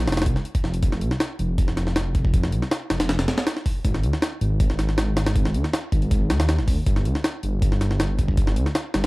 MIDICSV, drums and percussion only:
0, 0, Header, 1, 2, 480
1, 0, Start_track
1, 0, Key_signature, -4, "minor"
1, 0, Tempo, 377358
1, 1052, Time_signature, 4, 2, 24, 8
1, 11531, End_track
2, 0, Start_track
2, 0, Title_t, "Drums"
2, 95, Note_on_c, 9, 38, 93
2, 95, Note_on_c, 9, 42, 71
2, 156, Note_off_c, 9, 38, 0
2, 156, Note_off_c, 9, 42, 0
2, 156, Note_on_c, 9, 38, 95
2, 156, Note_on_c, 9, 42, 72
2, 219, Note_off_c, 9, 38, 0
2, 219, Note_off_c, 9, 42, 0
2, 219, Note_on_c, 9, 38, 93
2, 219, Note_on_c, 9, 42, 70
2, 276, Note_off_c, 9, 38, 0
2, 276, Note_off_c, 9, 42, 0
2, 276, Note_on_c, 9, 38, 92
2, 276, Note_on_c, 9, 42, 71
2, 332, Note_off_c, 9, 42, 0
2, 332, Note_on_c, 9, 42, 82
2, 333, Note_on_c, 9, 36, 104
2, 403, Note_off_c, 9, 38, 0
2, 457, Note_on_c, 9, 38, 41
2, 459, Note_off_c, 9, 42, 0
2, 460, Note_off_c, 9, 36, 0
2, 573, Note_on_c, 9, 42, 62
2, 584, Note_off_c, 9, 38, 0
2, 697, Note_off_c, 9, 42, 0
2, 697, Note_on_c, 9, 36, 103
2, 697, Note_on_c, 9, 42, 81
2, 813, Note_on_c, 9, 38, 42
2, 824, Note_off_c, 9, 42, 0
2, 825, Note_off_c, 9, 36, 0
2, 937, Note_on_c, 9, 42, 63
2, 940, Note_off_c, 9, 38, 0
2, 1050, Note_off_c, 9, 42, 0
2, 1050, Note_on_c, 9, 42, 92
2, 1052, Note_on_c, 9, 36, 115
2, 1174, Note_on_c, 9, 38, 45
2, 1177, Note_off_c, 9, 42, 0
2, 1179, Note_off_c, 9, 36, 0
2, 1289, Note_on_c, 9, 42, 70
2, 1302, Note_off_c, 9, 38, 0
2, 1414, Note_on_c, 9, 38, 54
2, 1416, Note_off_c, 9, 42, 0
2, 1529, Note_off_c, 9, 38, 0
2, 1529, Note_on_c, 9, 38, 118
2, 1529, Note_on_c, 9, 42, 89
2, 1657, Note_off_c, 9, 38, 0
2, 1657, Note_off_c, 9, 42, 0
2, 1771, Note_on_c, 9, 42, 66
2, 1898, Note_off_c, 9, 42, 0
2, 2011, Note_on_c, 9, 42, 92
2, 2012, Note_on_c, 9, 36, 118
2, 2136, Note_on_c, 9, 38, 45
2, 2138, Note_off_c, 9, 42, 0
2, 2139, Note_off_c, 9, 36, 0
2, 2252, Note_off_c, 9, 38, 0
2, 2252, Note_on_c, 9, 38, 51
2, 2252, Note_on_c, 9, 42, 70
2, 2376, Note_off_c, 9, 38, 0
2, 2376, Note_on_c, 9, 38, 42
2, 2380, Note_off_c, 9, 42, 0
2, 2491, Note_off_c, 9, 38, 0
2, 2491, Note_on_c, 9, 38, 119
2, 2491, Note_on_c, 9, 42, 88
2, 2619, Note_off_c, 9, 38, 0
2, 2619, Note_off_c, 9, 42, 0
2, 2732, Note_on_c, 9, 36, 102
2, 2732, Note_on_c, 9, 42, 70
2, 2857, Note_off_c, 9, 36, 0
2, 2857, Note_on_c, 9, 36, 102
2, 2859, Note_off_c, 9, 42, 0
2, 2972, Note_on_c, 9, 42, 95
2, 2973, Note_off_c, 9, 36, 0
2, 2973, Note_on_c, 9, 36, 116
2, 3097, Note_on_c, 9, 38, 58
2, 3099, Note_off_c, 9, 42, 0
2, 3100, Note_off_c, 9, 36, 0
2, 3210, Note_on_c, 9, 42, 70
2, 3224, Note_off_c, 9, 38, 0
2, 3337, Note_off_c, 9, 42, 0
2, 3337, Note_on_c, 9, 38, 43
2, 3452, Note_off_c, 9, 38, 0
2, 3452, Note_on_c, 9, 38, 119
2, 3452, Note_on_c, 9, 42, 92
2, 3579, Note_off_c, 9, 38, 0
2, 3579, Note_off_c, 9, 42, 0
2, 3690, Note_on_c, 9, 38, 106
2, 3690, Note_on_c, 9, 42, 79
2, 3815, Note_off_c, 9, 38, 0
2, 3815, Note_off_c, 9, 42, 0
2, 3815, Note_on_c, 9, 38, 105
2, 3815, Note_on_c, 9, 42, 80
2, 3932, Note_off_c, 9, 38, 0
2, 3932, Note_off_c, 9, 42, 0
2, 3932, Note_on_c, 9, 38, 107
2, 3932, Note_on_c, 9, 42, 86
2, 4057, Note_off_c, 9, 38, 0
2, 4057, Note_off_c, 9, 42, 0
2, 4057, Note_on_c, 9, 38, 105
2, 4057, Note_on_c, 9, 42, 79
2, 4173, Note_off_c, 9, 38, 0
2, 4173, Note_off_c, 9, 42, 0
2, 4173, Note_on_c, 9, 38, 111
2, 4173, Note_on_c, 9, 42, 82
2, 4295, Note_off_c, 9, 38, 0
2, 4295, Note_off_c, 9, 42, 0
2, 4295, Note_on_c, 9, 38, 107
2, 4295, Note_on_c, 9, 42, 80
2, 4410, Note_off_c, 9, 38, 0
2, 4410, Note_off_c, 9, 42, 0
2, 4410, Note_on_c, 9, 38, 120
2, 4410, Note_on_c, 9, 42, 91
2, 4536, Note_off_c, 9, 38, 0
2, 4536, Note_on_c, 9, 38, 43
2, 4537, Note_off_c, 9, 42, 0
2, 4652, Note_on_c, 9, 36, 98
2, 4652, Note_on_c, 9, 46, 85
2, 4663, Note_off_c, 9, 38, 0
2, 4779, Note_off_c, 9, 46, 0
2, 4780, Note_off_c, 9, 36, 0
2, 4891, Note_on_c, 9, 42, 92
2, 4892, Note_on_c, 9, 36, 113
2, 5017, Note_on_c, 9, 38, 46
2, 5018, Note_off_c, 9, 42, 0
2, 5019, Note_off_c, 9, 36, 0
2, 5132, Note_on_c, 9, 42, 70
2, 5144, Note_off_c, 9, 38, 0
2, 5257, Note_on_c, 9, 38, 54
2, 5259, Note_off_c, 9, 42, 0
2, 5371, Note_off_c, 9, 38, 0
2, 5371, Note_on_c, 9, 38, 121
2, 5371, Note_on_c, 9, 42, 93
2, 5498, Note_off_c, 9, 38, 0
2, 5498, Note_off_c, 9, 42, 0
2, 5613, Note_on_c, 9, 42, 68
2, 5740, Note_off_c, 9, 42, 0
2, 5851, Note_on_c, 9, 42, 90
2, 5852, Note_on_c, 9, 36, 117
2, 5976, Note_on_c, 9, 38, 45
2, 5978, Note_off_c, 9, 42, 0
2, 5979, Note_off_c, 9, 36, 0
2, 6091, Note_off_c, 9, 38, 0
2, 6091, Note_on_c, 9, 38, 53
2, 6091, Note_on_c, 9, 42, 68
2, 6217, Note_off_c, 9, 38, 0
2, 6217, Note_on_c, 9, 38, 44
2, 6218, Note_off_c, 9, 42, 0
2, 6332, Note_off_c, 9, 38, 0
2, 6332, Note_on_c, 9, 38, 118
2, 6332, Note_on_c, 9, 42, 91
2, 6459, Note_off_c, 9, 38, 0
2, 6459, Note_off_c, 9, 42, 0
2, 6573, Note_on_c, 9, 38, 110
2, 6573, Note_on_c, 9, 42, 84
2, 6697, Note_off_c, 9, 38, 0
2, 6697, Note_off_c, 9, 42, 0
2, 6697, Note_on_c, 9, 38, 109
2, 6697, Note_on_c, 9, 42, 83
2, 6812, Note_off_c, 9, 42, 0
2, 6812, Note_on_c, 9, 42, 94
2, 6813, Note_on_c, 9, 36, 113
2, 6824, Note_off_c, 9, 38, 0
2, 6937, Note_on_c, 9, 38, 58
2, 6940, Note_off_c, 9, 36, 0
2, 6940, Note_off_c, 9, 42, 0
2, 7052, Note_on_c, 9, 42, 71
2, 7064, Note_off_c, 9, 38, 0
2, 7177, Note_on_c, 9, 38, 47
2, 7179, Note_off_c, 9, 42, 0
2, 7294, Note_off_c, 9, 38, 0
2, 7294, Note_on_c, 9, 38, 116
2, 7294, Note_on_c, 9, 42, 87
2, 7421, Note_off_c, 9, 38, 0
2, 7421, Note_off_c, 9, 42, 0
2, 7533, Note_on_c, 9, 36, 99
2, 7533, Note_on_c, 9, 42, 66
2, 7658, Note_off_c, 9, 42, 0
2, 7658, Note_on_c, 9, 42, 45
2, 7660, Note_off_c, 9, 36, 0
2, 7773, Note_on_c, 9, 36, 121
2, 7774, Note_off_c, 9, 42, 0
2, 7774, Note_on_c, 9, 42, 94
2, 7901, Note_off_c, 9, 36, 0
2, 7901, Note_off_c, 9, 42, 0
2, 8014, Note_on_c, 9, 38, 108
2, 8014, Note_on_c, 9, 42, 83
2, 8137, Note_off_c, 9, 38, 0
2, 8137, Note_off_c, 9, 42, 0
2, 8137, Note_on_c, 9, 38, 108
2, 8137, Note_on_c, 9, 42, 83
2, 8252, Note_off_c, 9, 38, 0
2, 8252, Note_off_c, 9, 42, 0
2, 8252, Note_on_c, 9, 38, 105
2, 8252, Note_on_c, 9, 42, 81
2, 8377, Note_off_c, 9, 38, 0
2, 8377, Note_on_c, 9, 38, 43
2, 8379, Note_off_c, 9, 42, 0
2, 8493, Note_on_c, 9, 36, 98
2, 8493, Note_on_c, 9, 46, 81
2, 8504, Note_off_c, 9, 38, 0
2, 8620, Note_off_c, 9, 36, 0
2, 8620, Note_off_c, 9, 46, 0
2, 8732, Note_on_c, 9, 42, 92
2, 8733, Note_on_c, 9, 36, 117
2, 8856, Note_on_c, 9, 38, 44
2, 8859, Note_off_c, 9, 42, 0
2, 8860, Note_off_c, 9, 36, 0
2, 8973, Note_on_c, 9, 42, 71
2, 8983, Note_off_c, 9, 38, 0
2, 9097, Note_on_c, 9, 38, 53
2, 9100, Note_off_c, 9, 42, 0
2, 9212, Note_off_c, 9, 38, 0
2, 9212, Note_on_c, 9, 38, 117
2, 9212, Note_on_c, 9, 42, 91
2, 9340, Note_off_c, 9, 38, 0
2, 9340, Note_off_c, 9, 42, 0
2, 9452, Note_on_c, 9, 42, 69
2, 9579, Note_off_c, 9, 42, 0
2, 9693, Note_on_c, 9, 36, 116
2, 9693, Note_on_c, 9, 42, 96
2, 9819, Note_on_c, 9, 38, 45
2, 9820, Note_off_c, 9, 36, 0
2, 9820, Note_off_c, 9, 42, 0
2, 9934, Note_off_c, 9, 38, 0
2, 9934, Note_on_c, 9, 38, 52
2, 9934, Note_on_c, 9, 42, 69
2, 10058, Note_off_c, 9, 38, 0
2, 10058, Note_on_c, 9, 38, 44
2, 10061, Note_off_c, 9, 42, 0
2, 10173, Note_off_c, 9, 38, 0
2, 10173, Note_on_c, 9, 38, 114
2, 10173, Note_on_c, 9, 42, 91
2, 10300, Note_off_c, 9, 38, 0
2, 10300, Note_off_c, 9, 42, 0
2, 10413, Note_on_c, 9, 36, 100
2, 10413, Note_on_c, 9, 42, 71
2, 10538, Note_off_c, 9, 36, 0
2, 10538, Note_on_c, 9, 36, 100
2, 10540, Note_off_c, 9, 42, 0
2, 10651, Note_on_c, 9, 42, 92
2, 10653, Note_off_c, 9, 36, 0
2, 10653, Note_on_c, 9, 36, 116
2, 10777, Note_on_c, 9, 38, 58
2, 10779, Note_off_c, 9, 42, 0
2, 10780, Note_off_c, 9, 36, 0
2, 10892, Note_on_c, 9, 42, 72
2, 10905, Note_off_c, 9, 38, 0
2, 11018, Note_on_c, 9, 38, 45
2, 11019, Note_off_c, 9, 42, 0
2, 11131, Note_off_c, 9, 38, 0
2, 11131, Note_on_c, 9, 38, 119
2, 11131, Note_on_c, 9, 42, 88
2, 11258, Note_off_c, 9, 38, 0
2, 11258, Note_off_c, 9, 42, 0
2, 11372, Note_on_c, 9, 38, 101
2, 11372, Note_on_c, 9, 42, 80
2, 11500, Note_off_c, 9, 38, 0
2, 11500, Note_off_c, 9, 42, 0
2, 11531, End_track
0, 0, End_of_file